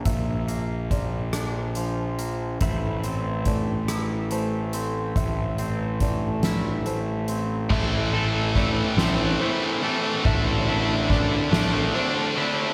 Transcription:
0.00 0.90 F3 medium
0.00 0.47 A#3 soft
0.00 0.91 D4 medium
0.05 2.57 A#1 medium
0.05 2.18 A#2 soft
0.05 0.91 E5 medium
0.05 kick medium
0.05 closed hi-hat medium
0.48 2.17 A#3 soft
0.48 closed hi-hat soft
0.91 1.75 F3 medium
0.91 1.76 D5 medium
0.91 kick medium
0.91 closed hi-hat soft
1.33 2.61 D4 medium
1.33 cross-stick medium
1.33 closed hi-hat medium
1.75 2.61 F3 medium
1.75 2.61 C5 medium
1.75 closed hi-hat soft
2.19 2.61 A#3 soft
2.19 closed hi-hat soft
2.61 5.12 A1 medium
2.61 5.15 A2 soft
2.61 7.67 A4 medium
2.61 7.67 C5 soft
2.61 7.67 E5 soft
2.61 3.46 E5 medium
2.61 7.67 B5 medium
2.61 kick medium
2.61 closed hi-hat medium
3.04 4.74 C4 medium
3.04 closed hi-hat soft
3.45 4.30 A3 medium
3.45 4.31 D5 medium
3.45 kick medium
3.45 closed hi-hat soft
3.88 6.01 E4 medium
3.88 cross-stick medium
3.88 closed hi-hat medium
4.31 6.00 A3 medium
4.31 5.16 C5 medium
4.31 closed hi-hat soft
4.73 5.58 C4 medium
4.73 closed hi-hat medium
5.16 7.67 A1 medium
5.16 7.28 A2 medium
5.16 6.01 E5 medium
5.16 kick medium
5.16 closed hi-hat medium
5.58 7.28 C4 medium
5.58 closed hi-hat soft
6.00 6.85 A3 medium
6.00 6.86 D5 medium
6.00 kick medium
6.00 closed hi-hat soft
6.43 7.71 E4 medium
6.43 snare medium
6.43 closed hi-hat medium
6.86 7.71 A3 medium
6.86 7.71 C5 medium
6.86 closed hi-hat soft
7.28 7.71 C4 soft
7.28 closed hi-hat soft
7.70 8.81 A1 medium
7.70 8.13 A2 medium
7.70 10.25 A2 medium
7.70 8.13 E3 medium
7.70 8.13 A3 medium
7.70 10.23 A4 medium
7.70 10.23 C5 medium
7.70 10.23 E5 medium
7.70 8.56 E5 medium
7.70 10.23 C6 medium
7.70 kick loud
7.70 crash loud
8.13 8.55 A2 medium
8.13 8.56 E3 medium
8.13 8.56 A3 medium
8.13 9.83 A4 medium
8.13 ride soft
8.55 8.97 A2 medium
8.55 8.97 E3 medium
8.55 8.98 A3 medium
8.55 9.40 E4 medium
8.55 9.41 D5 medium
8.55 kick medium
8.55 ride medium
8.97 9.34 A1 loud
8.97 9.40 A2 medium
8.97 9.40 E3 medium
8.97 9.41 A3 medium
8.97 10.25 C4 medium
8.97 snare loud
8.97 ride medium
9.40 9.82 A2 medium
9.40 9.82 E3 medium
9.40 9.83 A3 medium
9.40 10.26 E4 medium
9.40 10.25 C5 medium
9.40 ride medium
9.82 10.25 A2 medium
9.82 10.23 E3 medium
9.82 10.26 A3 medium
9.82 10.67 A4 medium
9.82 ride medium
10.25 11.35 A1 medium
10.25 12.37 A2 medium
10.25 10.67 D3 medium
10.25 10.68 A3 medium
10.25 10.68 D4 loud
10.25 12.74 F#4 medium
10.25 12.74 D5 medium
10.25 11.10 E5 medium
10.25 12.74 E5 medium
10.25 12.74 A5 medium
10.25 kick loud
10.25 ride medium
10.68 11.08 D3 medium
10.68 11.10 A3 medium
10.68 11.10 D4 medium
10.68 12.36 E4 medium
10.68 ride medium
11.09 11.50 D3 medium
11.09 11.51 A3 medium
11.09 11.93 D4 medium
11.09 11.51 D4 medium
11.09 11.95 D5 medium
11.09 kick medium
11.09 ride medium
11.51 11.89 A1 medium
11.51 11.93 D3 medium
11.51 11.94 A3 medium
11.51 12.74 A3 medium
11.51 11.94 D4 medium
11.51 snare loud
11.51 ride loud
11.94 12.35 D3 medium
11.94 12.36 A3 medium
11.94 12.74 D4 medium
11.94 12.36 D4 medium
11.94 12.74 C5 medium
11.94 ride medium
12.36 12.74 D3 medium
12.36 12.74 A3 medium
12.36 12.74 D4 medium
12.36 12.74 E4 medium
12.36 ride medium

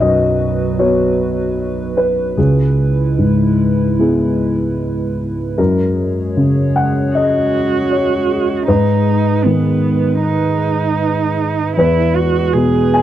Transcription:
0.00 2.33 B1 soft
0.00 1.26 F#2 soft
0.00 2.37 F#3 medium
0.00 2.33 F#4 medium
0.00 5.58 B4 medium
0.00 0.74 D#5 soft
0.79 2.33 B3 soft
0.79 2.34 F#4 soft
0.79 1.96 B4 soft
0.79 1.93 C#5 soft
1.97 2.34 B4 soft
2.37 5.54 C#2 soft
2.37 5.57 G#3 medium
2.37 5.58 E4 soft
2.37 3.98 G#4 soft
3.18 4.47 G#2 soft
3.99 5.55 B3 soft
3.99 5.55 E4 soft
3.99 5.55 G#4 soft
5.58 8.64 F#2 soft
5.58 11.73 G#3 soft
5.58 11.73 G#4 medium
5.58 6.71 A#4 soft
5.58 8.65 C#5 medium
6.37 8.69 C#3 soft
6.76 7.12 F#5 soft
7.14 8.64 F#4 soft
7.14 7.88 D#5 soft
7.91 8.64 C#5 soft
8.68 11.73 G#2 soft
8.68 9.47 D#4 soft
8.68 11.35 B4 soft
8.68 11.76 B4 medium
9.45 11.78 D#3 soft
9.45 10.22 B3 soft
10.22 11.74 D#4 soft
11.76 13.02 E2 soft
11.76 13.02 G#3 medium
11.76 12.17 E4 soft
11.76 13.02 G#4 medium
11.76 13.02 B4 medium
11.76 12.90 B4 medium
12.15 12.55 F#4 soft
12.53 13.02 B2 soft
12.53 13.02 G#4 medium
12.94 13.02 G#5 medium

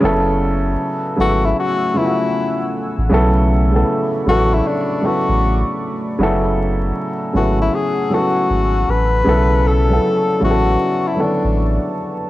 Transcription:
0.01 0.76 F#1 loud
0.01 0.92 C#3 loud
0.01 0.93 F#3 medium
0.01 9.22 A3 medium
0.01 0.93 B3 medium
0.01 0.94 E4 medium
0.01 3.08 F#5 medium
0.01 3.07 G#5 medium
0.01 3.07 E6 medium
0.05 0.94 A4 loud
1.16 1.54 G#1 medium
1.16 1.81 C#3 medium
1.16 1.82 F#3 medium
1.16 1.82 B3 medium
1.16 1.83 E4 medium
1.21 1.47 F#4 loud
1.21 1.83 A4 medium
1.46 1.58 E4 loud
1.60 1.99 F#4 loud
1.94 2.85 C#3 medium
1.94 2.85 F#3 medium
1.94 2.86 B3 medium
1.94 2.86 E4 medium
1.94 2.74 E4 medium
1.98 2.05 F4 medium
2.05 2.90 F#4 medium
2.98 3.10 A1 medium
3.09 3.84 B1 medium
3.09 3.55 C#3 medium
3.09 3.56 F#3 medium
3.09 3.56 B3 medium
3.09 3.57 E4 medium
3.09 6.15 D5 medium
3.09 6.16 B5 medium
3.09 6.16 C#6 medium
3.14 3.57 A4 loud
3.71 4.15 C#3 medium
3.71 4.15 F#3 medium
3.71 4.16 B3 medium
3.71 4.16 E4 medium
3.76 4.17 A4 medium
4.26 4.61 A1 medium
4.26 4.90 C#3 medium
4.26 4.90 F#3 medium
4.26 4.91 B3 medium
4.26 4.91 E4 medium
4.26 4.55 F#4 loud
4.30 4.92 A4 medium
4.54 4.69 E4 medium
4.67 5.08 D4 medium
5.01 5.92 C#3 medium
5.01 5.93 F#3 medium
5.01 5.93 B3 medium
5.01 5.94 E4 medium
5.05 5.82 F#4 loud
5.05 5.94 A4 medium
5.28 5.63 A1 medium
6.19 6.92 F#1 loud
6.19 7.09 C#3 medium
6.19 7.09 F#3 medium
6.19 7.10 B3 medium
6.19 7.10 E4 medium
6.19 9.23 F#5 medium
6.19 9.23 G#5 medium
6.19 9.23 E6 medium
6.23 7.11 A4 loud
7.33 7.69 G#1 medium
7.33 7.97 C#3 medium
7.33 7.98 F#3 medium
7.33 7.98 B3 medium
7.33 7.99 E4 medium
7.33 7.59 F#4 medium
7.38 7.99 A4 medium
7.62 7.76 E4 medium
7.75 8.15 G#4 loud
8.09 9.00 C#3 medium
8.09 9.01 F#3 medium
8.09 9.01 B3 medium
8.09 9.02 E4 medium
8.14 8.92 F#4 medium
8.14 9.02 A4 medium
8.50 8.85 G#1 loud
8.88 9.23 A1 medium
8.88 9.69 B4 loud
9.24 9.99 B1 loud
9.24 9.70 C#3 medium
9.24 9.71 F#3 medium
9.24 9.71 B3 medium
9.24 9.72 E4 medium
9.24 12.30 B4 medium
9.24 12.30 D5 medium
9.24 12.30 A5 medium
9.24 12.30 C#6 medium
9.29 9.73 A4 loud
9.67 10.43 A4 loud
9.89 10.31 C#3 medium
9.89 10.32 F#3 medium
9.89 10.32 B3 medium
9.89 10.33 E4 medium
9.93 10.34 A4 medium
10.40 10.77 A1 medium
10.40 11.04 C#3 medium
10.40 11.05 F#3 medium
10.40 11.05 B3 medium
10.40 11.06 E4 medium
10.44 11.09 F#4 loud
10.44 10.51 G#4 medium
10.51 11.10 A4 medium
11.08 11.23 E4 medium
11.15 12.07 D3 medium
11.15 12.08 F#3 medium
11.15 12.08 B3 medium
11.15 12.09 E4 medium
11.20 11.97 D4 medium
11.20 12.09 A4 medium
11.44 11.79 A1 medium

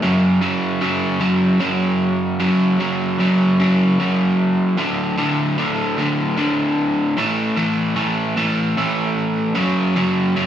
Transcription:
0.02 0.41 F#2 medium
0.02 0.40 C#3 medium
0.02 0.42 F#3 medium
0.41 0.80 F#2 medium
0.41 0.80 C#3 medium
0.41 0.81 F#3 loud
0.81 1.19 F#2 medium
0.81 1.20 C#3 medium
0.81 1.20 F#3 medium
1.20 1.59 F#2 medium
1.20 1.59 C#3 medium
1.20 1.60 F#3 loud
1.60 2.38 F#2 medium
1.60 2.39 C#3 medium
1.60 2.40 F#3 loud
2.40 2.78 F#2 loud
2.40 2.79 C#3 medium
2.40 2.80 F#3 loud
2.79 3.17 F#2 medium
2.79 3.18 C#3 medium
2.79 3.19 F#3 medium
3.19 3.58 F#2 medium
3.19 3.59 C#3 medium
3.19 3.59 F#3 medium
3.60 3.98 F#2 medium
3.60 3.99 C#3 medium
3.60 3.99 F#3 medium
3.99 4.77 F#2 medium
3.99 4.77 C#3 medium
3.99 4.77 F#3 medium
4.78 5.17 D2 medium
4.78 5.17 A2 medium
4.78 5.17 D3 loud
5.18 5.56 D2 medium
5.18 5.57 A2 medium
5.18 5.57 D3 medium
5.58 5.96 D2 medium
5.58 5.97 A2 medium
5.58 5.98 D3 medium
5.97 6.35 D2 medium
5.97 6.36 A2 medium
5.97 6.36 D3 medium
6.36 7.14 D2 medium
6.36 7.14 A2 medium
6.36 7.15 D3 loud
7.17 7.55 A2 medium
7.17 7.56 E3 medium
7.17 7.56 A3 loud
7.56 7.94 A2 medium
7.56 7.95 E3 loud
7.56 7.95 A3 medium
7.95 8.35 A2 medium
7.95 8.36 E3 medium
7.95 8.36 A3 medium
8.36 8.75 A2 medium
8.36 8.76 E3 loud
8.36 8.76 A3 loud
8.77 9.53 A2 medium
8.77 9.53 E3 medium
8.77 9.53 A3 loud
9.55 9.95 F#2 medium
9.55 9.95 C#3 loud
9.55 9.96 F#3 loud
9.95 10.35 F#2 medium
9.95 10.35 C#3 loud
9.95 10.36 F#3 loud
10.36 10.46 F#2 medium
10.36 10.46 C#3 medium
10.36 10.46 F#3 medium

